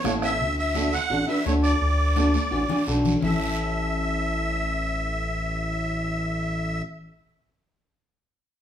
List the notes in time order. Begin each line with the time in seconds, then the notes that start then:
0.04 A1 C#4 E4 A4 C#5, bombo rim, high conga, short guiro
0.22 E5, bombo rim, short guiro
0.40 D2, long guiro
0.58 E5
0.75 D4 F#4 A4, high conga, short guiro
0.93 F#5, short guiro
1.10 A1 D4 F#4 A4, long guiro
1.28 D4 F#4 B4 E5
1.45 D2 D4 F#4 A4 C#5, high conga, short guiro
1.63 D5, short guiro
1.81 D2, long guiro
2.16 D4 F#4 A4, high conga, short guiro
2.34 high conga, short guiro
2.51 A1 D4 F#4 G#4, long guiro
2.69 D4 F#4 G#4, low conga
2.87 B1 D4 F#4 A4, short guiro
3.05 low conga, short guiro
3.21 A1 C#4 E4 E5, low conga, long guiro
3.25 A4